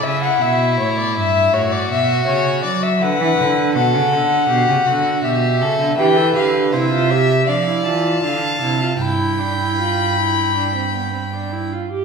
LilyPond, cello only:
\new Staff \with { instrumentName = "Cello" } { \clef bass \time 4/4 \key e \minor \tempo 4 = 80 cis8 b,8 a,8 g,8 a,8 b,8 cis8 fis8 | d16 e16 d8 b,16 cis16 d8 b,16 cis16 d8 b,8 cis16 d16 | \key g \mixolydian e8 d8 c4 f8 e8 d8 c8 | g,2.~ g,8 r8 | }